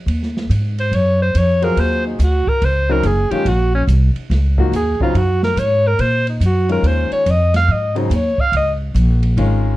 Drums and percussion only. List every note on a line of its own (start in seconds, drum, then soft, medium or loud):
0.08 ride medium
0.23 snare soft
0.37 snare soft
0.51 hi-hat pedal soft
0.51 ride medium
0.78 ride soft
0.93 ride medium
1.35 hi-hat pedal medium
1.35 ride medium
1.62 ride soft
1.77 ride medium
2.20 hi-hat pedal medium
2.20 ride medium
2.47 kick medium
2.62 ride medium
3.03 hi-hat pedal soft
3.03 ride medium
3.31 ride soft
3.46 ride medium
3.88 hi-hat pedal medium
3.88 ride medium
4.16 ride soft
4.31 snare soft
4.31 ride medium
4.58 kick medium
4.73 hi-hat pedal medium
4.73 ride medium
5.00 kick medium
5.15 ride medium
5.43 snare medium
5.57 hi-hat pedal medium
5.57 ride medium
5.99 ride medium
6.27 ride soft
6.41 hi-hat pedal medium
6.41 ride medium
6.69 ride soft
6.84 ride medium
7.12 ride soft
7.26 hi-hat pedal soft
7.26 ride medium
7.54 snare soft
7.54 ride medium
7.96 ride soft
8.11 hi-hat pedal medium
8.11 ride medium
8.38 kick medium
8.53 ride medium
8.96 hi-hat pedal medium
8.96 ride medium
9.23 ride soft
9.38 ride medium